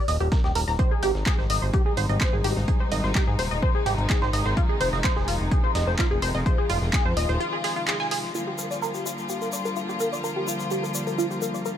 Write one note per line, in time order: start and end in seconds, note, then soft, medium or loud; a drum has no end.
0.08 0.17 D#1 medium
0.08 0.16 D#5 medium
0.08 closed hi-hat medium
0.08 open hi-hat loud
0.20 0.29 D#1 medium
0.20 0.28 G4 loud
0.20 closed hi-hat soft
0.32 0.40 A#4 medium
0.32 kick loud
0.32 snare loud
0.32 closed hi-hat medium
0.44 0.52 D#1 medium
0.44 0.51 G4 medium
0.44 snare medium
0.55 0.65 D#1 medium
0.55 0.60 A#4 medium
0.55 closed hi-hat medium
0.55 open hi-hat loud
0.68 0.76 D#1 medium
0.68 0.72 A#5 loud
0.68 snare soft
0.79 8.31 C3 medium
0.79 8.31 D#3 medium
0.79 4.53 G3 medium
0.79 8.31 G#3 medium
0.79 6.42 D#4 medium
0.79 0.91 C5 loud
0.79 kick loud
0.79 closed hi-hat medium
0.91 1.02 G#4 medium
1.03 1.12 G#1 medium
1.03 1.11 G4 loud
1.03 closed hi-hat medium
1.03 open hi-hat loud
1.15 1.23 G#1 medium
1.15 snare soft
1.26 1.38 G#4 medium
1.26 kick loud
1.26 snare loud
1.26 clap loud
1.26 closed hi-hat medium
1.39 1.47 G#1 medium
1.39 1.46 C5 medium
1.39 snare soft
1.50 1.59 G#1 medium
1.50 1.62 D#5 medium
1.50 closed hi-hat medium
1.50 open hi-hat loud
1.62 1.71 G#1 medium
1.62 1.70 C5 medium
1.74 1.82 G4 loud
1.74 kick loud
1.74 closed hi-hat medium
1.86 1.93 G#4 medium
1.97 2.06 G#1 medium
1.97 2.05 C5 loud
1.97 closed hi-hat medium
1.97 open hi-hat loud
2.09 2.18 G#1 medium
2.09 2.17 D#5 medium
2.09 closed hi-hat soft
2.21 2.32 C5 loud
2.21 kick loud
2.21 snare loud
2.21 clap loud
2.21 closed hi-hat medium
2.33 2.41 G#1 medium
2.33 2.44 G#4 medium
2.44 2.53 G#1 medium
2.44 2.52 G4 loud
2.44 closed hi-hat medium
2.44 open hi-hat loud
2.57 2.65 G#1 medium
2.57 snare soft
2.68 2.80 G#4 medium
2.68 kick loud
2.68 closed hi-hat medium
2.80 2.88 C5 medium
2.92 3.01 G#1 medium
2.92 3.03 D#5 medium
2.92 closed hi-hat medium
2.92 open hi-hat loud
3.04 3.12 G#1 medium
3.04 3.11 C5 medium
3.04 snare soft
3.15 3.23 G4 loud
3.15 kick loud
3.15 snare loud
3.15 clap loud
3.15 closed hi-hat medium
3.27 3.36 G#2 medium
3.27 3.35 G#4 medium
3.39 3.48 D#1 medium
3.39 3.47 C5 loud
3.39 closed hi-hat medium
3.39 open hi-hat loud
3.51 3.60 D#1 medium
3.51 3.59 D#5 medium
3.51 closed hi-hat soft
3.62 3.74 C5 loud
3.62 kick loud
3.75 3.86 G#4 medium
3.86 3.95 G#1 medium
3.86 3.94 G4 loud
3.86 closed hi-hat medium
3.86 open hi-hat medium
3.98 4.07 G#1 medium
3.98 closed hi-hat soft
4.10 4.21 G#4 medium
4.10 kick loud
4.10 snare loud
4.10 clap loud
4.10 closed hi-hat medium
4.22 4.30 G#1 medium
4.22 4.29 C5 medium
4.22 snare medium
4.33 4.42 G#1 medium
4.33 4.45 D#5 medium
4.33 closed hi-hat medium
4.33 open hi-hat loud
4.46 4.54 G#1 medium
4.46 4.53 C5 medium
4.46 snare soft
4.57 8.31 F3 medium
4.57 4.65 F4 loud
4.57 kick loud
4.57 closed hi-hat medium
4.69 4.77 G#4 medium
4.81 4.90 F1 medium
4.81 4.89 C5 loud
4.81 closed hi-hat medium
4.81 open hi-hat loud
4.93 5.01 F1 medium
4.93 5.00 D#5 medium
4.93 snare soft
5.04 5.16 C5 loud
5.04 kick loud
5.04 snare loud
5.04 clap loud
5.04 closed hi-hat medium
5.16 5.25 F1 medium
5.16 5.27 G#4 medium
5.16 snare soft
5.28 5.37 F1 medium
5.28 5.36 F4 loud
5.28 closed hi-hat medium
5.28 open hi-hat medium
5.40 5.49 F1 medium
5.51 5.63 G#4 medium
5.51 kick loud
5.51 closed hi-hat medium
5.64 5.71 C5 medium
5.75 5.84 F1 medium
5.75 5.87 D#5 medium
5.75 snare loud
5.75 closed hi-hat medium
5.75 open hi-hat medium
5.87 5.96 F1 medium
5.87 5.95 C5 medium
5.99 6.07 F4 loud
5.99 kick loud
5.99 snare loud
5.99 clap loud
5.99 closed hi-hat medium
6.11 6.19 F1 medium
6.11 6.18 G#4 medium
6.22 6.31 F1 medium
6.22 6.30 C5 loud
6.22 closed hi-hat medium
6.22 open hi-hat loud
6.35 6.43 F1 medium
6.35 6.42 D#5 medium
6.35 snare soft
6.46 8.33 F4 medium
6.46 6.58 C5 loud
6.46 kick loud
6.46 closed hi-hat medium
6.58 6.69 G#4 medium
6.70 6.79 F1 medium
6.70 6.78 F4 loud
6.70 closed hi-hat medium
6.70 open hi-hat loud
6.82 6.90 F1 medium
6.82 snare soft
6.93 7.05 G#4 medium
6.93 kick loud
6.93 snare loud
6.93 clap loud
6.93 closed hi-hat medium
7.05 7.14 F2 medium
7.05 7.13 C5 medium
7.17 7.26 D#1 medium
7.17 7.28 D#5 medium
7.17 closed hi-hat medium
7.17 open hi-hat loud
7.29 7.38 D#1 medium
7.29 7.36 C5 medium
7.29 closed hi-hat soft
7.40 7.48 F4 loud
7.40 closed hi-hat medium
7.53 7.60 G#4 medium
7.64 7.76 G#4 loud
7.64 snare loud
7.64 closed hi-hat medium
7.64 open hi-hat loud
7.76 7.84 F4 medium
7.76 closed hi-hat soft
7.88 7.96 G#4 medium
7.88 snare loud
7.88 clap loud
7.88 closed hi-hat medium
8.00 8.07 G#5 medium
8.00 snare medium
8.11 8.19 G#4 loud
8.11 closed hi-hat medium
8.11 open hi-hat loud
8.24 snare soft
8.35 11.78 D3 medium
8.35 11.78 F3 medium
8.35 11.78 G3 medium
8.35 11.78 A#3 medium
8.35 8.43 F4 loud
8.35 11.78 F4 medium
8.35 closed hi-hat medium
8.35 shaker soft
8.47 8.55 G4 medium
8.58 8.67 A#4 medium
8.58 closed hi-hat medium
8.58 shaker medium
8.71 8.78 D5 medium
8.71 snare soft
8.71 shaker soft
8.82 8.94 A#4 loud
8.82 closed hi-hat medium
8.82 shaker soft
8.94 9.05 G4 medium
8.94 snare soft
8.94 shaker soft
9.06 9.14 F4 medium
9.06 shaker medium
9.18 shaker soft
9.29 9.41 G4 medium
9.29 closed hi-hat medium
9.29 shaker soft
9.42 9.49 A#4 medium
9.42 shaker soft
9.52 9.65 D5 medium
9.52 shaker medium
9.65 9.73 A#4 medium
9.65 shaker soft
9.76 9.85 F4 loud
9.76 shaker soft
9.89 9.96 G4 medium
9.89 shaker soft
10.00 10.08 A#4 loud
10.00 shaker medium
10.12 10.20 D5 medium
10.12 snare soft
10.12 shaker soft
10.24 10.36 A#4 medium
10.24 closed hi-hat medium
10.24 shaker soft
10.36 10.47 G4 medium
10.47 10.55 F4 loud
10.47 closed hi-hat medium
10.47 shaker medium
10.60 snare soft
10.60 shaker soft
10.71 10.83 G4 medium
10.71 closed hi-hat medium
10.71 shaker soft
10.83 10.91 A#4 medium
10.83 shaker soft
10.95 11.06 D5 medium
10.95 closed hi-hat medium
10.95 shaker medium
11.07 11.14 A#4 medium
11.07 closed hi-hat soft
11.07 shaker soft
11.18 11.26 F4 medium
11.18 open hi-hat medium
11.18 shaker medium
11.31 11.38 G4 medium
11.31 shaker soft
11.42 11.50 A#4 medium
11.42 closed hi-hat medium
11.42 shaker medium
11.54 11.62 D5 medium
11.54 shaker soft
11.66 11.77 A#4 loud
11.66 closed hi-hat medium
11.66 shaker soft